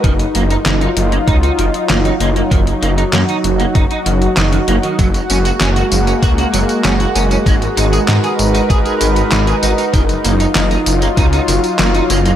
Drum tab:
HH |xxxxxxxxxxxxxxxx|xxxxxxxxxxxxxxxx|xxxxxxxxxxxxxxxx|xxxxxxxxxxxxxxxx|
TB |----------------|----------------|xxxxxxxxxxxxxxxx|xxxxxxxxxxxxxxxx|
CP |----x-------x---|----x-------x---|----x-------x---|----x-------x---|
SD |----o-------o---|----o-------o---|----o-------o---|----o-------o---|
BD |o-------o-------|o-------o-------|o-------o-------|o-------o-------|

HH |xxxxxxxxxxxxxxxx|
TB |xxxxxxxxxxxxxxxx|
CP |----x-------x---|
SD |----o-------o---|
BD |o-------o-------|